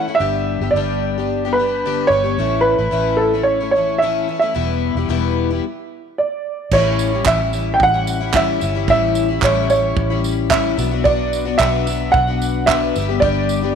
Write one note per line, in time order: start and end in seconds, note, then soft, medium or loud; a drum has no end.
0.00 0.19 F#5 medium
0.08 0.21 A3 soft
0.08 0.20 C#4 soft
0.08 0.20 E4 soft
0.15 0.74 E5 medium
0.19 0.58 G1 medium
0.19 0.61 G2 medium
0.19 0.61 D3 medium
0.19 0.61 G3 medium
0.19 0.61 B3 medium
0.19 0.61 D4 medium
0.19 0.60 G4 medium
0.61 0.73 G1 medium
0.61 0.75 G3 soft
0.61 0.75 B3 soft
0.61 0.75 D4 soft
0.61 0.75 G4 soft
0.71 2.06 G1 medium
0.71 1.57 D5 medium
0.76 1.16 G2 medium
0.76 1.16 D3 medium
0.76 1.16 G3 medium
0.76 1.17 B3 medium
0.76 1.17 D4 medium
0.76 1.17 G4 medium
1.18 1.45 G3 soft
1.18 1.45 B3 soft
1.18 1.44 D4 soft
1.18 1.44 G4 soft
1.45 1.57 G3 soft
1.45 1.58 B3 soft
1.45 1.58 D4 soft
1.45 1.57 G4 soft
1.53 2.10 B4 medium
1.58 1.84 G3 soft
1.58 1.85 B3 medium
1.58 1.85 D4 medium
1.58 1.86 G4 medium
1.86 2.12 G2 medium
1.86 2.12 D3 medium
1.86 2.10 G3 medium
1.86 2.10 B3 medium
1.86 2.11 D4 medium
1.86 2.12 G4 medium
2.07 2.35 G1 medium
2.07 2.65 C#5 loud
2.12 2.24 G3 medium
2.12 2.24 B3 medium
2.12 2.23 D4 medium
2.12 2.23 G4 medium
2.24 2.38 G3 soft
2.24 2.38 B3 soft
2.24 2.38 D4 soft
2.24 2.38 G4 soft
2.38 2.75 A1 medium
2.38 2.79 A2 medium
2.38 2.79 E3 medium
2.38 2.79 A3 medium
2.38 2.78 C#4 medium
2.38 2.77 E4 medium
2.61 3.19 B4 medium
2.79 2.91 A1 medium
2.79 2.91 A3 soft
2.79 2.91 C#4 soft
2.79 2.92 E4 soft
2.91 4.24 A1 medium
2.91 3.32 A2 medium
2.91 3.33 E3 medium
2.91 3.33 A3 medium
2.91 3.33 C#4 medium
2.91 3.32 E4 medium
3.17 3.43 A4 medium
3.34 3.61 A3 soft
3.34 3.61 C#4 soft
3.34 3.59 E4 soft
3.43 3.70 C#5 medium
3.61 3.75 A3 soft
3.61 3.75 C#4 soft
3.61 3.74 E4 soft
3.71 4.01 C#5 medium
3.75 4.01 E3 medium
3.75 4.01 A3 medium
3.75 4.02 C#4 medium
3.75 4.03 E4 medium
3.98 4.29 A2 medium
3.98 4.28 A3 medium
3.98 4.38 E5 medium
4.03 4.27 E3 medium
4.03 4.28 C#4 medium
4.03 4.29 E4 medium
4.28 4.41 E3 medium
4.28 4.42 A3 medium
4.28 4.42 C#4 medium
4.28 4.40 E4 medium
4.39 4.55 C#4 soft
4.39 4.55 E4 medium
4.39 6.40 E5 medium
4.44 4.55 A3 soft
4.54 4.93 E1 medium
4.54 4.96 E2 medium
4.54 4.96 B2 medium
4.54 4.96 E3 medium
4.54 4.96 G3 medium
4.54 4.96 B3 medium
4.54 4.96 E4 medium
4.95 5.08 E1 medium
4.95 5.08 E3 soft
4.95 5.09 G3 soft
4.95 5.09 B3 soft
4.95 5.09 E4 medium
5.09 5.59 E1 medium
5.09 5.50 E2 medium
5.09 5.50 B2 medium
5.09 5.50 E3 medium
5.09 5.50 G3 loud
5.09 5.50 B3 medium
5.09 5.49 E4 medium
5.51 5.65 E3 soft
5.51 5.65 G3 soft
5.51 5.64 B3 soft
5.51 5.64 E4 medium
6.18 6.74 D5 medium
6.71 7.22 A1 loud
6.71 7.13 A2 medium
6.71 7.13 E3 medium
6.71 7.13 G3 medium
6.71 7.13 C#4 medium
6.71 7.11 E4 medium
6.71 7.23 C#5 medium
6.71 kick loud
6.71 crash medium
6.99 tambourine medium
7.12 7.25 G3 soft
7.12 7.25 C#4 soft
7.12 7.26 E4 soft
7.25 7.76 A1 loud
7.25 7.40 A2 medium
7.25 7.39 E3 medium
7.25 7.40 G3 medium
7.25 7.40 C#4 medium
7.25 7.38 E4 medium
7.25 7.75 E5 medium
7.25 kick loud
7.25 clap loud
7.39 7.52 G3 soft
7.39 7.53 C#4 soft
7.39 7.53 E4 soft
7.53 7.94 E3 soft
7.53 7.94 G3 medium
7.53 7.93 C#4 medium
7.53 7.93 E4 medium
7.53 tambourine medium
7.74 7.81 G5 medium
7.80 8.57 A1 loud
7.80 8.37 F#5 loud
7.80 kick loud
7.94 8.22 G3 soft
7.94 8.21 C#4 soft
7.94 8.20 E4 medium
8.07 tambourine medium
8.21 8.33 G3 soft
8.21 8.33 C#4 soft
8.21 8.34 E4 medium
8.34 8.61 A2 medium
8.34 8.59 E3 medium
8.34 8.61 G3 medium
8.34 8.61 C#4 medium
8.34 8.62 E4 medium
8.34 8.89 E5 medium
8.34 kick loud
8.34 clap loud
8.61 8.87 G1 medium
8.61 8.75 E3 medium
8.61 8.75 G3 medium
8.61 8.75 C#4 medium
8.61 8.74 E4 medium
8.61 tambourine medium
8.75 8.88 G3 soft
8.75 8.89 C#4 medium
8.75 8.88 E4 medium
8.88 9.38 A1 medium
8.88 9.29 A2 medium
8.88 9.29 E3 medium
8.88 9.30 G3 medium
8.88 9.29 C#4 medium
8.88 9.27 E4 medium
8.88 9.40 E5 loud
8.88 kick loud
9.15 tambourine medium
9.29 9.43 G3 soft
9.29 9.43 C#4 soft
9.29 9.42 E4 medium
9.42 9.93 A1 loud
9.42 9.70 A2 medium
9.42 9.69 E3 medium
9.42 9.69 G3 medium
9.42 9.70 C#4 medium
9.42 9.70 E4 medium
9.42 9.69 C#5 medium
9.42 kick loud
9.42 clap loud
9.70 10.10 E3 medium
9.70 10.11 G3 medium
9.70 10.10 C#4 medium
9.70 10.09 E4 medium
9.70 10.20 C#5 medium
9.70 tambourine medium
9.97 10.74 A1 loud
9.97 kick loud
10.10 10.50 G3 soft
10.10 10.52 C#4 soft
10.10 10.51 E4 medium
10.24 tambourine medium
10.50 10.78 A2 medium
10.50 10.77 E3 medium
10.50 10.77 G3 medium
10.50 10.78 C#4 medium
10.50 10.79 E4 medium
10.50 11.01 E5 medium
10.50 kick loud
10.50 clap loud
10.77 11.55 B1 loud
10.77 10.91 F#3 medium
10.77 10.91 B3 medium
10.77 10.91 D4 medium
10.77 10.90 F#4 medium
10.77 tambourine medium
10.91 11.04 B3 soft
10.91 11.05 D4 medium
10.91 11.05 F#4 medium
11.04 11.45 B2 medium
11.04 11.46 F#3 medium
11.04 11.46 B3 medium
11.04 11.45 D4 medium
11.04 11.44 F#4 medium
11.04 11.60 D5 medium
11.04 kick loud
11.33 tambourine medium
11.45 11.58 B3 soft
11.45 11.59 D4 soft
11.45 11.59 F#4 soft
11.58 12.10 B1 loud
11.58 11.86 B2 medium
11.58 11.86 F#3 medium
11.58 11.86 B3 loud
11.58 11.87 D4 medium
11.58 11.87 F#4 loud
11.58 12.14 E5 loud
11.58 kick loud
11.58 clap loud
11.87 12.28 F#3 medium
11.87 12.28 B3 medium
11.87 12.27 D4 medium
11.87 12.26 F#4 medium
11.87 tambourine medium
12.12 12.91 B1 loud
12.12 12.68 F#5 loud
12.12 kick loud
12.27 12.68 B3 soft
12.27 12.68 D4 soft
12.27 12.68 F#4 medium
12.42 tambourine medium
12.66 12.95 B2 medium
12.66 12.95 F#3 medium
12.66 12.96 B3 medium
12.66 12.96 D4 medium
12.66 12.96 F#4 medium
12.66 13.17 E5 medium
12.66 kick loud
12.66 clap loud
12.96 13.20 G1 loud
12.96 13.09 G3 medium
12.96 13.09 B3 medium
12.96 13.09 D4 medium
12.96 13.08 G4 medium
12.96 tambourine medium
13.09 13.22 G3 soft
13.09 13.22 B3 soft
13.09 13.22 D4 soft
13.09 13.22 G4 medium
13.20 13.72 G1 loud
13.20 13.63 G2 medium
13.20 13.63 D3 medium
13.20 13.63 G3 medium
13.20 13.63 B3 medium
13.20 13.63 D4 medium
13.20 13.62 G4 medium
13.20 13.71 D5 medium
13.20 kick loud
13.49 tambourine medium
13.63 13.75 G3 soft
13.63 13.75 B3 soft
13.63 13.75 D4 soft
13.63 13.75 G4 soft